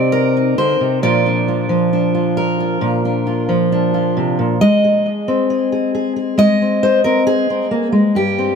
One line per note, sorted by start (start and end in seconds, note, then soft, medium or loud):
0.00 0.58 C3 medium
0.00 0.98 C4 medium
0.00 0.36 D#4 soft
0.00 0.12 G4 soft
0.00 0.58 D5 loud
0.12 1.02 A#4 medium
0.37 0.98 D#4 soft
0.58 0.80 D3 medium
0.58 1.03 C5 loud
0.80 1.03 C3 medium
1.02 2.80 A#2 medium
1.02 1.68 F3 soft
1.02 1.25 D4 soft
1.02 1.47 F4 soft
1.02 2.37 D5 loud
1.26 1.92 D4 soft
1.48 2.13 F4 soft
1.69 3.47 F3 medium
1.93 3.04 D4 soft
2.15 2.59 F4 soft
2.37 4.60 A#4 medium
2.60 3.26 F4 soft
2.81 4.37 A#2 medium
3.05 3.71 D4 soft
3.27 3.93 F4 medium
3.49 4.60 F3 medium
3.72 4.55 D4 medium
3.94 4.55 F4 soft
4.17 4.38 C3 medium
4.39 4.60 A#2 medium
4.61 6.36 G#3 medium
4.61 6.37 D#5 loud
4.84 5.49 G#4 soft
5.28 6.61 C4 medium
5.50 5.71 G#4 medium
5.72 5.93 G#4 medium
5.95 6.15 G#4 soft
6.16 6.83 G#4 soft
6.38 7.91 G#3 medium
6.38 7.72 D#5 loud
6.62 7.04 C4 soft
6.83 7.04 C5 loud
7.04 7.49 C4 medium
7.04 7.26 A#4 medium
7.27 8.15 G#4 loud
7.50 7.71 C4 soft
7.71 7.92 A#3 medium
7.92 8.15 G#3 medium
8.15 8.55 G2 medium
8.15 8.55 G4 medium
8.38 8.55 C4 soft